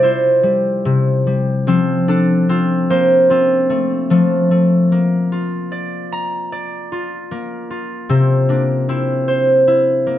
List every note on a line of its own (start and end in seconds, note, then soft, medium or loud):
0.00 1.73 E4 medium
0.00 2.02 C5 medium
0.00 1.68 D5 medium
0.00 0.95 E5 medium
0.43 1.26 G3 medium
0.85 1.72 C3 medium
1.27 1.72 G3 medium
1.67 4.09 F3 medium
1.67 2.49 C4 medium
2.08 4.88 D4 medium
2.08 4.28 A4 medium
2.49 3.30 C4 medium
2.49 3.29 F4 medium
2.90 3.76 A#3 medium
2.90 4.88 C5 medium
3.30 6.31 C4 medium
3.30 5.32 F4 medium
3.70 4.10 A3 medium
4.10 4.97 F3 medium
4.10 4.51 A3 medium
4.51 4.98 A3 medium
4.92 7.31 A#3 medium
5.32 6.92 F4 medium
5.72 6.52 D5 medium
6.12 7.71 A#5 medium
6.52 8.37 D5 medium
6.92 7.70 F4 medium
7.31 8.49 A#3 medium
7.70 8.95 F4 medium
8.09 10.18 C3 medium
8.09 8.88 C4 medium
8.49 10.06 A#3 medium
8.49 8.60 D4 medium
8.89 10.18 C4 medium
8.89 9.67 E4 medium
9.28 10.18 C5 medium
9.68 10.18 E4 medium
10.07 10.18 A#3 medium